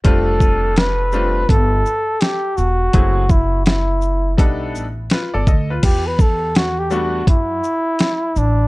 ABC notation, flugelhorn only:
X:1
M:4/4
L:1/16
Q:"Swing 16ths" 1/4=83
K:Em
V:1 name="Flugelhorn"
A4 B4 A4 G2 F2- | F2 E2 E4 z8 | G B A2 F G F2 E6 D2 |]